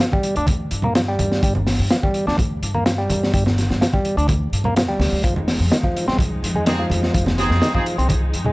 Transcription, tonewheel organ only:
0.01 0.07 F3 loud
0.13 0.35 G3 medium
0.37 0.46 D4 loud
0.84 0.94 A#3 medium
0.96 1.02 F3 loud
1.08 1.42 G3 medium
1.43 1.54 G3 medium
1.91 1.97 F3 loud
2.03 2.26 G3 medium
2.27 2.37 D4 loud
2.75 2.84 A#3 medium
2.86 2.92 F3 loud
2.98 3.32 G3 medium
3.34 3.44 G3 medium
3.81 3.88 F3 loud
3.94 4.16 G3 medium
4.17 4.27 D4 loud
4.65 4.75 A#3 medium
4.77 4.83 F3 loud
4.89 5.23 G3 medium
5.24 5.34 F3 medium
5.71 5.78 D#3 loud
5.84 6.07 F3 medium
6.08 6.17 C4 loud
6.56 6.65 G#3 medium
6.67 6.73 D#3 loud
6.79 7.13 F3 medium
7.15 7.25 F3 medium
7.62 7.68 D#3 loud
7.75 7.97 F3 medium
7.98 8.08 C4 loud
8.46 8.53 G#3 medium

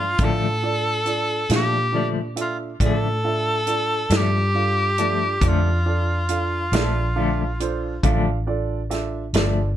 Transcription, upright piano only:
0.20 0.52 D4 medium
0.20 0.52 F4 soft
0.20 0.52 A4 soft
0.20 0.52 F5 medium
0.62 0.95 D4 soft
0.62 0.95 F4 soft
0.62 0.95 A4 soft
0.62 0.95 D5 medium
1.05 1.38 D4 soft
1.05 1.38 F4 soft
1.05 1.39 A4 soft
1.05 1.39 D5 soft
1.49 1.82 D4 soft
1.49 1.82 F4 soft
1.49 1.83 A4 soft
1.49 1.83 F5 soft
1.92 2.25 D4 soft
1.92 2.25 F4 soft
1.92 2.25 A4 soft
1.92 2.25 D5 soft
2.35 2.69 D4 soft
2.35 2.69 F4 soft
2.35 2.69 A4 soft
2.35 2.69 E5 medium
2.80 3.13 D4 soft
2.80 3.13 F4 soft
2.80 3.13 A4 soft
2.80 3.13 D5 medium
3.24 3.56 D4 soft
3.24 3.56 F4 soft
3.24 3.56 A4 soft
3.24 3.57 E5 medium
3.67 3.99 D4 soft
3.67 4.00 F4 soft
3.67 4.00 A4 soft
3.67 4.00 D5 soft
4.10 4.43 D4 soft
4.10 4.43 F4 soft
4.10 4.43 A4 soft
4.10 4.44 D5 soft
4.54 4.87 D4 soft
4.54 4.87 F4 soft
4.54 4.87 A4 soft
4.54 4.87 F5 soft
4.99 5.31 D4 soft
4.99 5.31 F4 soft
4.99 5.31 A4 soft
4.99 5.31 D5 medium
5.42 5.74 D4 medium
5.42 5.75 F4 soft
5.42 5.75 A4 soft
5.42 5.75 D5 medium
5.85 6.18 D4 soft
5.85 6.18 F4 soft
5.85 6.18 A4 soft
5.85 6.18 D5 soft
6.29 6.62 D4 soft
6.29 6.62 F4 soft
6.29 6.62 A4 soft
6.29 6.62 F5 soft
6.73 7.05 D4 medium
6.73 7.05 F4 medium
6.73 7.05 A4 medium
6.73 7.05 D5 medium
7.16 7.48 D4 medium
7.16 7.49 F4 soft
7.16 7.48 A4 soft
7.16 7.49 F5 medium
7.60 7.92 D4 medium
7.60 7.92 F4 medium
7.60 7.93 A4 medium
7.60 7.93 C5 medium
8.04 8.37 D4 medium
8.04 8.36 F4 medium
8.04 8.37 A4 medium
8.04 8.37 F5 medium
8.47 8.79 D4 medium
8.47 8.79 F4 medium
8.47 8.80 A4 medium
8.47 8.80 D5 medium
8.90 9.23 D4 medium
8.90 9.23 F4 soft
8.90 9.23 A4 soft
8.90 9.23 E5 medium
9.34 9.67 D4 medium
9.34 9.67 F4 soft
9.34 9.67 A4 medium
9.34 9.67 D5 medium

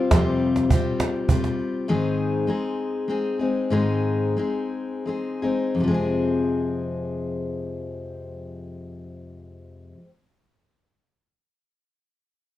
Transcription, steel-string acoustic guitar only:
0.00 0.11 G3 soft
0.00 0.12 C4 soft
0.00 0.12 F4 soft
0.00 0.12 G4 soft
0.12 0.71 F2 medium
0.12 0.71 C3 medium
0.12 0.70 G3 medium
0.12 0.71 C4 medium
0.12 0.71 F4 medium
0.12 0.72 G4 medium
0.71 1.28 G3 medium
0.71 1.30 C4 medium
0.71 1.30 F4 medium
0.71 1.31 G4 medium
1.29 1.88 G3 soft
1.29 1.89 C4 medium
1.29 1.89 F4 medium
1.29 1.89 G4 medium
1.88 2.48 G#2 medium
1.88 2.48 D#3 medium
1.88 2.47 G#3 medium
1.88 2.48 C4 medium
1.88 2.48 D#4 medium
1.88 2.49 G#4 medium
2.47 3.07 G#3 soft
2.47 3.09 C4 medium
2.47 3.09 D#4 medium
2.47 3.10 G#4 medium
3.08 3.39 G#3 medium
3.08 3.40 C4 medium
3.08 3.39 D#4 medium
3.08 3.38 G#4 medium
3.39 3.70 G#3 soft
3.39 3.71 C4 soft
3.39 3.71 D#4 soft
3.39 3.71 G#4 soft
3.70 4.36 G#2 medium
3.70 4.37 D#3 medium
3.70 4.35 G#3 medium
3.70 4.37 C4 medium
3.70 4.37 D#4 medium
3.70 4.38 G#4 medium
4.37 5.04 G#3 soft
4.37 5.06 C4 medium
4.37 5.06 D#4 soft
4.37 5.07 G#4 medium
5.06 5.42 G#3 soft
5.06 5.43 C4 soft
5.06 5.42 D#4 soft
5.06 5.41 G#4 medium
5.42 5.81 G#3 soft
5.42 5.81 C4 soft
5.42 5.80 D#4 soft
5.42 5.80 G#4 soft
5.75 9.92 F2 medium
5.80 9.98 C3 medium
5.80 10.01 F3 medium
5.88 10.05 G#3 medium
5.88 10.08 C4 medium
5.94 10.12 G#4 medium

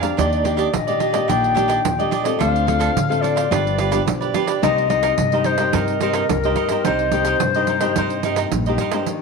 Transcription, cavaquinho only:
0.01 0.16 A#4 soft
0.01 0.15 D5 soft
0.01 0.16 F5 soft
0.17 0.43 D4 medium
0.17 0.44 G4 medium
0.17 0.44 D5 medium
0.17 0.44 D#5 medium
0.44 0.56 D4 soft
0.44 0.56 G4 soft
0.44 0.57 D5 soft
0.44 0.56 D#5 medium
0.57 0.67 D4 medium
0.57 0.67 G4 medium
0.57 0.68 D5 medium
0.57 0.68 D#5 medium
0.87 0.99 G4 soft
0.87 0.99 D5 soft
0.87 0.99 D#5 soft
0.99 1.13 D4 soft
0.99 1.13 G4 medium
0.99 1.11 D5 medium
0.99 1.13 D#5 medium
1.13 1.27 G4 soft
1.13 1.27 D5 medium
1.13 1.27 D#5 soft
1.28 1.53 D4 medium
1.28 1.54 G4 medium
1.28 1.55 D5 medium
1.28 1.54 D#5 medium
1.55 1.67 D4 medium
1.55 1.67 G4 medium
1.55 1.68 D5 medium
1.55 1.67 D#5 medium
1.68 1.78 D4 medium
1.68 1.79 G4 medium
1.68 1.79 D5 medium
1.68 1.79 D#5 medium
1.99 2.10 G4 soft
1.99 2.11 D5 soft
1.99 2.11 D#5 soft
2.11 2.25 D4 medium
2.11 2.23 G4 medium
2.11 2.23 D5 medium
2.11 2.23 D#5 medium
2.24 2.38 G4 soft
2.24 2.38 D5 soft
2.24 2.38 D#5 soft
2.39 2.66 D4 medium
2.39 2.66 A4 medium
2.39 2.66 C5 medium
2.39 2.67 F5 medium
2.67 2.78 D4 soft
2.67 2.79 A4 medium
2.67 2.79 C5 medium
2.67 2.80 F5 soft
2.79 2.90 D4 medium
2.79 2.90 A4 medium
2.79 2.90 C5 medium
2.79 2.90 F5 medium
3.11 3.21 A4 soft
3.11 3.21 C5 soft
3.11 3.22 F5 soft
3.22 3.36 D4 soft
3.22 3.36 A4 medium
3.22 3.35 C5 medium
3.22 3.35 F5 medium
3.36 3.50 A4 soft
3.36 3.50 C5 soft
3.36 3.49 F5 medium
3.51 3.77 F4 medium
3.51 3.78 G4 medium
3.51 3.78 B4 medium
3.51 3.79 D5 medium
3.79 3.90 F4 medium
3.79 3.91 G4 medium
3.79 3.90 B4 medium
3.79 3.91 D5 medium
3.91 4.01 F4 medium
3.91 4.01 G4 medium
3.91 4.01 B4 medium
3.91 4.02 D5 medium
4.21 4.33 G4 soft
4.21 4.34 B4 soft
4.21 4.34 D5 medium
4.34 4.47 F4 medium
4.34 4.47 G4 medium
4.34 4.47 B4 medium
4.34 4.46 D5 medium
4.47 4.61 G4 soft
4.47 4.61 B4 soft
4.47 4.61 D5 soft
4.63 4.88 D#4 medium
4.63 4.89 A#4 medium
4.63 4.89 C5 medium
4.63 4.89 D#5 medium
4.89 5.01 D#4 medium
4.89 5.02 A#4 medium
4.89 5.02 C5 medium
4.89 5.02 D#5 medium
5.03 5.12 D#4 medium
5.03 5.13 A#4 medium
5.03 5.13 C5 medium
5.03 5.13 D#5 medium
5.33 5.45 A#4 soft
5.33 5.45 C5 soft
5.33 5.45 D#5 soft
5.45 5.58 D#4 medium
5.45 5.59 A#4 medium
5.45 5.58 C5 medium
5.45 5.57 D#5 medium
5.58 5.73 A#4 soft
5.58 5.73 C5 soft
5.58 5.72 D#5 soft
5.74 6.01 D#4 medium
5.74 6.01 A#4 medium
5.74 6.01 C5 medium
5.74 6.01 D#5 medium
6.02 6.13 D#4 medium
6.02 6.14 A#4 medium
6.02 6.14 C5 medium
6.02 6.14 D#5 medium
6.15 6.24 D#4 medium
6.15 6.24 A#4 medium
6.15 6.24 C5 medium
6.15 6.24 D#5 medium
6.45 6.56 A#4 soft
6.45 6.56 C5 soft
6.45 6.57 D#5 medium
6.57 6.70 D#4 medium
6.57 6.70 A#4 medium
6.57 6.70 C5 medium
6.57 6.69 D#5 medium
6.71 6.84 A#4 soft
6.71 6.84 C5 soft
6.71 6.84 D#5 soft
6.87 7.12 D#4 medium
6.87 7.13 A#4 medium
6.87 7.13 C5 medium
6.87 7.13 D#5 medium
7.14 7.25 D#4 medium
7.14 7.25 A#4 soft
7.14 7.26 C5 soft
7.14 7.26 D#5 medium
7.26 7.35 D#4 medium
7.26 7.35 A#4 medium
7.26 7.36 C5 medium
7.26 7.36 D#5 medium
7.56 7.68 A#4 soft
7.56 7.68 C5 soft
7.56 7.68 D#5 soft
7.68 7.81 D#4 soft
7.68 7.81 A#4 medium
7.68 7.81 C5 medium
7.68 7.80 D#5 medium
7.81 7.95 A#4 soft
7.81 7.95 C5 soft
7.81 7.94 D#5 soft
7.97 8.23 D#4 medium
7.97 8.24 A#4 medium
7.97 8.24 C5 medium
7.97 8.24 D#5 medium
8.24 8.36 D#4 medium
8.24 8.36 A#4 medium
8.24 8.37 C5 medium
8.24 8.37 D#5 medium
8.37 8.47 D#4 medium
8.37 8.47 A#4 medium
8.37 8.47 C5 medium
8.37 8.47 D#5 medium
8.67 8.79 A#4 soft
8.67 8.79 C5 soft
8.67 8.79 D#5 soft
8.80 8.92 D#4 medium
8.80 8.93 A#4 medium
8.80 8.92 C5 medium
8.80 8.91 D#5 medium
8.93 9.07 A#4 soft
8.93 9.06 C5 soft
8.93 9.06 D#5 soft

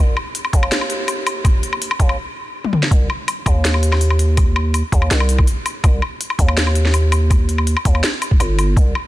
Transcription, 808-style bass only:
0.00 0.15 C2 loud
0.53 1.90 D#2 loud
1.99 2.17 D#2 loud
2.91 3.08 C2 loud
3.46 4.82 D#2 loud
4.92 5.09 D#2 loud
5.11 5.46 C2 medium
5.84 6.01 C2 loud
6.39 7.75 D#2 loud
7.85 8.02 D#2 medium
8.40 8.76 G1 loud
8.77 8.94 C2 loud

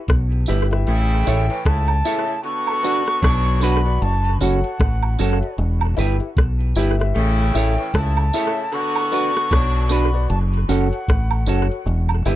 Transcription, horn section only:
0.87 1.46 C#3 loud
0.87 1.46 A3 loud
0.87 1.46 E4 loud
1.49 1.62 A2 medium
1.49 1.62 E3 medium
1.49 1.62 C#4 loud
1.65 1.97 C#3 medium
1.65 1.97 A3 medium
1.65 1.97 E4 medium
2.05 2.36 C#3 loud
2.05 2.36 A3 medium
2.05 2.36 E4 loud
2.44 3.19 D3 loud
2.44 3.19 B3 loud
2.44 3.19 F#4 loud
3.22 3.82 B2 loud
3.22 3.82 F#3 loud
3.22 3.81 D4 loud
7.15 7.74 C#3 loud
7.15 7.74 A3 loud
7.15 7.74 E4 loud
7.78 7.91 A2 medium
7.78 7.91 E3 medium
7.78 7.91 C#4 loud
7.94 8.26 C#3 medium
7.94 8.25 A3 medium
7.94 8.25 E4 loud
8.33 8.65 C#3 medium
8.33 8.65 A3 medium
8.33 8.65 E4 loud
8.72 9.47 D3 loud
8.72 9.47 B3 loud
8.72 9.47 F#4 loud
9.51 10.10 B2 loud
9.51 10.10 F#3 loud
9.51 10.10 D4 loud

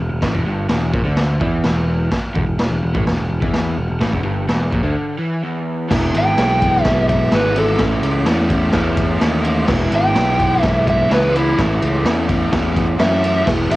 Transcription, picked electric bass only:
0.00 0.10 E1 medium
0.12 0.22 E1 medium
0.23 0.33 A1 loud
0.34 0.45 E1 loud
0.46 0.68 G1 loud
0.69 0.91 E1 medium
0.93 1.04 A#1 medium
1.05 1.38 D2 loud
1.41 1.63 E2 loud
1.64 2.08 E1 loud
2.11 muted picked electric bass stroke soft
2.35 2.46 E1 medium
2.47 2.58 E1 medium
2.60 2.70 E1 medium
2.71 2.82 E1 medium
2.83 2.94 E1 medium
2.95 3.06 A1 loud
3.07 3.18 E1 medium
3.19 3.30 E1 medium
3.31 3.42 E1 medium
3.42 3.75 E2 medium
3.78 3.89 E1 medium
3.90 4.00 E1 medium
4.00 4.12 A1 loud
4.13 4.24 E1 loud
4.25 4.47 G1 medium
4.49 4.71 E1 medium
4.72 4.82 A#1 medium
4.83 4.94 D2 loud
5.91 6.12 E1 loud
6.14 6.35 G#1 medium
6.38 6.80 B1 medium
6.85 7.28 B1 medium
7.32 7.75 G#1 loud
7.79 8.00 A1 loud
8.02 8.24 C#2 medium
8.26 8.69 E2 loud
8.73 9.16 E2 loud
9.22 9.64 D#2 loud
9.69 9.90 E1 loud
9.92 10.13 G#1 medium
10.16 10.58 B1 loud
10.64 11.06 B1 loud
11.11 11.53 C#2 medium
11.59 11.79 A1 loud
11.82 12.03 C#2 medium
12.04 12.47 E2 medium
12.52 12.95 E2 medium
12.99 13.42 F#2 medium
13.47 13.68 E1 loud
13.69 13.76 G#1 medium

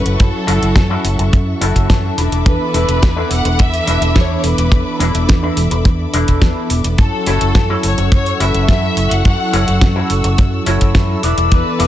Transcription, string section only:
0.00 6.94 A4 medium
0.00 6.94 E5 medium
0.00 2.13 F#5 medium
0.00 2.13 C#6 medium
2.18 6.95 B5 medium
2.18 6.95 D6 medium
6.98 11.87 A4 medium
6.98 11.19 F#5 medium
6.98 11.19 C#6 medium
6.98 11.87 E6 medium
11.22 11.87 D5 medium
11.22 11.87 B5 medium

